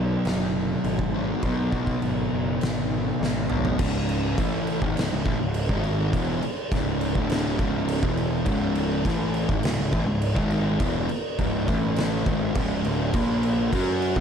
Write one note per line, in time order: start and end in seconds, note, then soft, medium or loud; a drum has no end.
0.00 0.16 B1 medium
0.00 1.12 B2 medium
0.00 1.13 F#3 medium
0.00 1.13 B3 loud
0.25 0.74 F#1 medium
0.25 snare loud
0.25 crash medium
0.84 1.32 G#1 medium
0.84 crash medium
0.99 kick medium
1.14 1.42 B2 medium
1.14 1.42 F#3 medium
1.14 1.42 B3 medium
1.42 1.67 B1 loud
1.42 3.47 B2 medium
1.42 3.49 F#3 medium
1.42 kick loud
1.42 crash medium
1.47 3.48 B3 medium
1.72 1.97 B1 medium
1.72 kick medium
1.87 kick medium
2.02 2.26 G#1 medium
2.02 crash medium
2.33 2.56 F#1 medium
2.61 3.10 G#1 medium
2.61 snare loud
2.61 crash medium
3.21 3.68 G#1 loud
3.21 snare medium
3.50 3.78 B2 medium
3.50 3.78 F#3 medium
3.50 3.77 B3 medium
3.50 mid tom medium
3.65 floor tom medium
3.79 4.33 C#1 loud
3.79 4.37 C#2 loud
3.79 4.37 G#2 loud
3.79 4.37 C#3 loud
3.79 kick loud
3.79 crash loud
3.79 crash medium
4.09 crash medium
4.38 4.79 A1 medium
4.38 4.81 A2 medium
4.38 4.81 E3 loud
4.38 4.81 A3 loud
4.38 kick loud
4.38 crash medium
4.67 crash medium
4.82 4.95 G#1 loud
4.82 4.96 G#2 medium
4.82 4.96 D#3 loud
4.82 kick loud
4.97 5.11 C#1 medium
4.97 5.11 C#2 medium
4.97 5.11 G#2 medium
4.97 snare loud
4.97 crash loud
5.12 5.25 C#1 medium
5.12 5.25 C#2 medium
5.12 5.26 G#2 medium
5.25 5.39 A1 loud
5.25 5.39 A2 medium
5.25 5.40 E3 loud
5.25 kick loud
5.25 crash medium
5.40 5.68 C#1 medium
5.40 5.64 C#2 medium
5.40 5.64 G#2 medium
5.54 crash medium
5.69 6.10 G#1 medium
5.69 6.13 G#2 loud
5.69 6.13 D#3 medium
5.69 6.13 G#3 loud
5.69 kick loud
5.84 crash medium
6.13 6.41 E1 loud
6.13 6.42 E2 loud
6.13 6.43 B2 loud
6.13 6.43 E3 loud
6.13 kick loud
6.13 crash medium
6.42 muted picked electric bass stroke soft
6.42 muted distorted electric guitar stroke medium
6.42 crash medium
6.72 7.13 C#1 medium
6.72 7.16 C#2 loud
6.72 7.16 G#2 loud
6.72 7.17 C#3 loud
6.72 kick loud
6.72 snare soft
6.72 crash medium
7.01 crash medium
7.15 7.56 D1 loud
7.15 7.59 D2 loud
7.15 7.60 A2 loud
7.15 7.60 D3 loud
7.15 kick loud
7.29 snare loud
7.29 crash loud
7.59 8.00 C#1 loud
7.59 8.03 C#2 medium
7.59 8.03 G#2 medium
7.59 8.03 C#3 loud
7.59 kick loud
7.59 crash medium
7.88 crash loud
8.03 8.44 E1 loud
8.03 8.46 E2 medium
8.03 8.46 B2 loud
8.03 8.47 E3 loud
8.03 kick loud
8.17 crash medium
8.46 9.02 C#1 loud
8.46 9.04 C#2 loud
8.46 9.05 G#2 loud
8.46 9.05 C#3 loud
8.46 kick loud
8.46 crash medium
8.75 crash medium
9.05 9.47 A1 loud
9.05 9.49 A2 medium
9.05 9.49 E3 loud
9.05 9.49 A3 medium
9.05 kick loud
9.05 snare soft
9.05 crash medium
9.34 crash medium
9.49 9.63 G#1 loud
9.49 9.63 G#2 loud
9.49 9.64 D#3 loud
9.49 kick loud
9.63 9.78 C#1 medium
9.63 9.76 C#2 medium
9.63 9.77 G#2 medium
9.63 snare loud
9.63 crash loud
9.77 9.92 C#1 medium
9.77 9.92 C#2 medium
9.77 9.93 G#2 medium
9.92 10.07 A1 loud
9.92 10.06 A2 medium
9.92 10.06 E3 loud
9.92 kick loud
9.92 crash medium
10.06 10.35 C#1 medium
10.06 10.31 C#2 medium
10.06 10.31 G#2 medium
10.22 crash medium
10.35 10.78 G#1 loud
10.35 10.79 G#2 medium
10.35 10.79 D#3 loud
10.35 10.80 G#3 loud
10.35 kick loud
10.50 crash medium
10.80 11.08 E1 loud
10.80 11.09 E2 medium
10.80 11.09 B2 loud
10.80 11.09 E3 loud
10.80 kick loud
10.80 crash medium
11.09 muted distorted electric guitar stroke medium
11.09 muted picked electric bass stroke soft
11.09 crash medium
11.39 11.66 C#1 loud
11.39 11.68 C#2 medium
11.39 11.68 G#2 loud
11.39 11.68 C#3 loud
11.39 kick loud
11.39 crash medium
11.68 12.23 A1 medium
11.68 12.25 A2 loud
11.68 12.26 E3 loud
11.68 12.26 A3 loud
11.68 kick loud
11.68 crash medium
11.96 snare loud
11.96 crash medium
12.26 12.54 G#1 loud
12.26 12.55 G#2 medium
12.26 12.55 D#3 medium
12.26 12.56 G#3 loud
12.26 kick loud
12.26 crash medium
12.55 12.83 C#1 loud
12.55 12.85 C#2 loud
12.55 12.85 G#2 loud
12.55 12.85 C#3 loud
12.55 kick loud
12.55 crash loud
12.84 13.12 D1 loud
12.84 13.14 D2 loud
12.84 13.14 A2 loud
12.84 13.14 D3 loud
12.84 crash medium
13.13 13.69 A#1 loud
13.13 13.72 A#2 loud
13.13 13.72 F3 loud
13.13 13.72 A#3 loud
13.13 kick loud
13.13 crash medium
13.43 crash medium
13.73 14.14 F#2 medium
13.73 14.16 F#3 medium
13.73 14.17 C#4 medium
13.73 14.17 F#4 loud
13.73 kick loud
13.73 crash loud
14.02 crash medium
14.16 14.20 E2 loud
14.16 kick loud